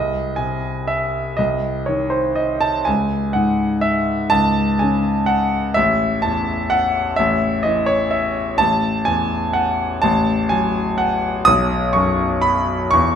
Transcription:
0.00 1.35 C2 medium
0.00 0.37 D#5 medium
0.36 1.97 C3 soft
0.36 0.88 G#5 medium
0.87 1.38 E5 medium
1.37 2.83 C2 medium
1.37 1.87 D#5 medium
1.86 2.87 D#3 soft
1.86 2.12 C#5 medium
2.10 2.36 C5 medium
2.35 2.61 D#5 medium
2.61 2.86 A5 medium
2.85 4.29 C#2 medium
2.85 3.34 G#5 medium
3.33 4.91 G#2 soft
3.33 3.83 F#5 medium
3.81 4.31 E5 medium
4.30 5.72 C#2 medium
4.30 4.79 A5 loud
4.79 5.77 C#3 soft
4.79 5.29 G#5 medium
5.26 5.75 F#5 medium
5.74 7.14 A1 medium
5.74 6.22 E5 medium
6.22 7.75 E2 soft
6.22 6.71 A5 medium
6.70 7.17 F#5 medium
7.16 8.57 A1 medium
7.16 7.64 E5 medium
7.63 8.60 E3 soft
7.63 7.88 D#5 medium
7.86 8.12 C#5 medium
8.11 8.36 E5 medium
8.58 9.99 A1 medium
8.58 9.06 A5 loud
9.05 10.61 E2 soft
9.05 9.55 G#5 medium
9.53 10.02 F#5 medium
10.02 11.43 A1 medium
10.02 10.50 A5 loud
10.49 11.47 F#3 soft
10.49 10.99 G#5 medium
10.98 11.46 F#5 medium
11.45 12.89 B1 medium
11.45 11.93 D#6 loud
11.93 12.93 F#2 soft
11.93 12.44 C#6 medium
12.42 12.91 B5 medium
12.91 13.15 E2 medium
12.91 13.15 C#6 loud

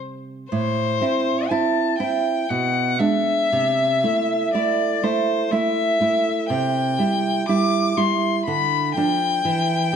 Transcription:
0.00 0.46 C3 soft
0.00 0.50 G3 soft
0.51 1.00 A2 soft
0.51 1.51 C5 medium
1.01 1.46 C4 soft
1.01 1.46 E4 soft
1.50 1.96 C4 soft
1.50 1.96 E4 soft
1.50 1.98 A5 medium
1.99 2.45 C4 soft
1.99 2.45 E4 soft
1.99 2.50 G5 soft
2.48 2.99 B2 soft
2.48 3.00 F#5 medium
2.99 3.48 G#3 soft
2.99 3.48 D4 soft
2.99 4.53 E5 medium
3.52 4.03 C3 soft
4.04 4.50 A3 soft
4.04 4.51 E4 soft
4.53 4.99 A3 soft
4.53 5.00 E4 soft
4.53 5.05 D5 medium
5.03 5.48 A3 soft
5.03 5.48 E4 soft
5.03 5.52 C5 soft
5.51 5.97 A3 soft
5.51 5.97 E4 soft
5.51 6.49 E5 medium
6.01 6.46 A3 soft
6.01 6.46 E4 soft
6.50 6.97 C3 soft
6.50 7.45 G5 medium
6.99 7.43 G3 soft
6.99 7.44 E4 soft
7.48 7.94 G3 soft
7.48 7.94 E4 soft
7.48 7.99 D6 medium
7.97 8.42 G3 soft
7.97 8.43 E4 soft
7.97 8.45 C6 medium
8.46 8.94 D3 medium
8.46 8.94 B5 medium
8.96 9.41 F3 soft
8.96 9.41 D4 soft
8.96 9.96 G5 medium
9.45 9.91 E3 medium
9.93 9.96 G3 soft

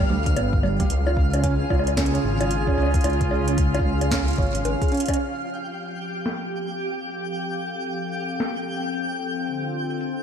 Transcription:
0.00 0.90 G3 medium
0.00 0.90 D4 medium
0.00 5.20 F4 medium
0.00 0.90 A4 medium
0.00 0.90 B4 medium
0.00 5.20 F5 medium
0.00 0.90 G5 medium
0.10 0.38 D2 loud
0.10 0.17 G3 medium
0.26 kick medium
0.26 closed hi-hat soft
0.36 0.84 G1 medium
0.36 0.49 B3 medium
0.36 closed hi-hat medium
0.36 high bongo medium
0.53 kick loud
0.63 0.78 G3 medium
0.63 high bongo medium
0.80 0.85 G3 loud
0.80 kick loud
0.80 closed hi-hat soft
0.90 1.65 C#2 medium
0.90 5.19 C#3 medium
0.90 closed hi-hat medium
1.07 5.19 C#4 medium
1.07 1.14 F4 medium
1.07 6.80 F4 medium
1.07 high bongo medium
1.17 kick loud
1.33 1.42 C#4 medium
1.33 closed hi-hat medium
1.33 high bongo medium
1.33 high bongo soft
1.35 high bongo soft
1.40 1.51 C#4 loud
1.40 5.19 G#5 medium
1.40 kick loud
1.40 closed hi-hat medium
1.40 high bongo soft
1.50 5.19 G#4 medium
1.70 2.18 C#2 medium
1.70 1.83 F4 medium
1.70 kick loud
1.70 high bongo medium
1.79 high bongo medium
1.87 closed hi-hat soft
1.87 high bongo medium
1.97 2.12 C#4 medium
1.97 kick medium
1.97 snare loud
1.97 closed hi-hat medium
1.97 high bongo medium
2.06 closed hi-hat soft
2.14 2.18 C#4 loud
2.14 closed hi-hat soft
2.24 2.72 G#1 loud
2.41 2.48 F4 medium
2.41 closed hi-hat medium
2.41 high bongo medium
2.51 closed hi-hat medium
2.67 2.76 C#4 medium
2.67 kick loud
2.67 high bongo soft
2.74 high bongo soft
2.77 2.97 C#2 medium
2.77 2.85 C#4 loud
2.77 high bongo soft
2.83 high bongo soft
2.86 high bongo soft
2.94 kick loud
2.94 closed hi-hat soft
3.01 closed hi-hat soft
3.04 3.79 C#2 medium
3.04 3.17 F4 medium
3.04 closed hi-hat medium
3.04 high bongo medium
3.10 closed hi-hat soft
3.13 closed hi-hat soft
3.21 kick loud
3.21 closed hi-hat soft
3.31 3.46 C#4 medium
3.31 high bongo medium
3.48 3.52 C#4 loud
3.48 closed hi-hat medium
3.58 kick loud
3.58 closed hi-hat medium
3.75 3.82 F4 medium
3.75 closed hi-hat soft
3.75 high bongo medium
3.80 kick loud
3.85 4.33 C#2 medium
4.01 4.10 C#4 medium
4.01 closed hi-hat medium
4.01 high bongo medium
4.11 4.19 C#4 loud
4.11 kick loud
4.11 snare loud
4.11 closed hi-hat medium
4.28 closed hi-hat soft
4.31 closed hi-hat soft
4.33 closed hi-hat soft
4.36 4.49 G#1 medium
4.36 4.54 C#5 medium
4.36 kick loud
4.36 closed hi-hat soft
4.42 closed hi-hat soft
4.47 closed hi-hat soft
4.51 closed hi-hat soft
4.55 4.61 G#1 loud
4.55 closed hi-hat medium
4.65 4.76 G#1 medium
4.65 4.81 C#4 medium
4.65 closed hi-hat medium
4.65 high bongo medium
4.82 4.89 G#4 medium
4.82 kick loud
4.82 closed hi-hat soft
4.88 closed hi-hat soft
4.92 4.99 C#4 loud
4.92 closed hi-hat soft
4.95 closed hi-hat soft
4.97 closed hi-hat soft
5.00 closed hi-hat medium
5.00 closed hi-hat soft
5.06 5.16 C#4 loud
5.06 kick loud
5.06 closed hi-hat soft
5.08 closed hi-hat medium
5.08 high bongo medium
5.10 closed hi-hat medium
5.10 high bongo medium
5.14 high bongo soft
5.15 high bongo soft
5.17 9.47 F3 medium
5.17 10.23 G4 medium
5.17 10.23 G5 medium
5.17 high bongo soft
5.34 10.23 C4 medium
5.34 10.23 G4 medium
5.34 closed hi-hat soft
5.62 closed hi-hat soft
5.72 10.23 A4 medium
5.72 closed hi-hat medium
5.89 closed hi-hat soft
6.01 10.23 F5 medium
6.16 closed hi-hat soft
6.26 snare loud
6.26 closed hi-hat medium
6.42 closed hi-hat soft
6.69 closed hi-hat soft
6.79 closed hi-hat medium
7.23 closed hi-hat soft
7.33 closed hi-hat medium
7.49 closed hi-hat soft
7.76 closed hi-hat medium
7.86 closed hi-hat medium
8.03 closed hi-hat soft
8.30 closed hi-hat soft
8.37 snare loud
8.37 closed hi-hat soft
8.40 closed hi-hat medium
8.46 closed hi-hat soft
8.49 closed hi-hat soft
8.83 closed hi-hat soft
8.90 closed hi-hat soft
8.94 closed hi-hat medium
8.99 closed hi-hat soft
9.47 10.23 D3 medium
9.47 closed hi-hat medium
9.54 10.23 F4 medium
9.64 closed hi-hat soft
9.91 closed hi-hat soft
10.01 closed hi-hat medium
10.17 closed hi-hat soft

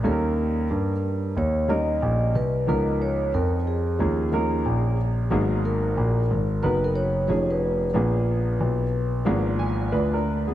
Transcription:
0.03 0.66 D#2 loud
0.03 0.92 G3 medium
0.03 0.92 A#3 medium
0.03 0.92 C#4 medium
0.03 0.92 D#4 medium
0.03 0.13 A4 medium
0.03 1.32 A#4 medium
0.11 0.96 A#4 medium
0.71 1.33 G2 medium
1.37 1.99 D#2 medium
1.37 1.71 C#5 medium
1.68 2.32 G3 medium
1.68 2.32 A#3 medium
1.68 2.32 C#4 medium
1.68 2.33 D#4 medium
1.68 2.33 A#4 medium
1.68 2.37 D#5 medium
2.02 2.33 A#1 medium
2.35 2.66 C2 medium
2.35 2.66 B4 medium
2.67 3.30 C#2 medium
2.67 3.56 F3 medium
2.67 3.56 B3 medium
2.67 3.56 C#4 medium
2.67 3.56 D#4 medium
2.67 3.56 A#4 medium
2.67 3.02 A#4 medium
3.02 3.32 C#5 medium
3.34 3.96 F2 medium
3.34 3.49 A#4 medium
3.67 4.95 G#4 medium
3.99 4.62 D#2 medium
3.99 4.28 F3 medium
3.99 4.28 A#3 medium
3.99 4.28 C#4 medium
3.99 4.28 D#4 medium
3.99 4.28 G#4 medium
4.32 4.96 F3 medium
4.32 4.96 A#3 medium
4.32 4.96 C#4 medium
4.32 4.97 D#4 medium
4.32 4.97 A#4 medium
4.66 5.28 A#1 medium
5.30 5.94 G#1 loud
5.30 6.19 F#3 medium
5.30 6.19 A#3 medium
5.30 6.19 B3 medium
5.30 6.20 D#4 medium
5.30 6.20 G#4 medium
5.65 6.67 A#4 medium
5.97 6.29 A#1 medium
6.31 6.62 G#1 medium
6.62 7.26 F#1 medium
6.62 7.28 F#3 medium
6.62 7.29 B3 medium
6.62 7.28 D#4 medium
6.62 7.29 A#4 medium
6.62 6.85 B4 medium
6.62 7.29 B4 medium
6.84 6.95 A#4 medium
6.96 7.52 C#5 loud
7.28 7.92 F1 medium
7.28 7.85 F3 medium
7.28 7.86 A3 medium
7.28 7.86 C#4 medium
7.28 7.86 D#4 medium
7.28 7.86 G#4 medium
7.50 9.11 B4 medium
7.94 8.58 A#1 medium
7.94 8.82 F3 medium
7.94 8.83 A#3 medium
7.94 8.83 B3 medium
7.94 8.83 D4 medium
7.94 8.83 G#4 medium
8.61 9.23 B1 medium
9.25 9.89 G#1 loud
9.25 10.14 F3 medium
9.25 9.92 A#3 medium
9.25 9.92 B3 medium
9.25 9.92 D4 medium
9.25 9.93 G#4 medium
9.59 9.90 G#5 medium
9.92 10.54 D2 medium
9.92 10.13 F4 soft
9.92 10.54 B4 medium
9.92 10.13 D5 medium
10.13 10.45 D4 medium
10.13 10.45 A#4 medium
10.47 10.54 B3 medium
10.47 10.54 G#4 medium

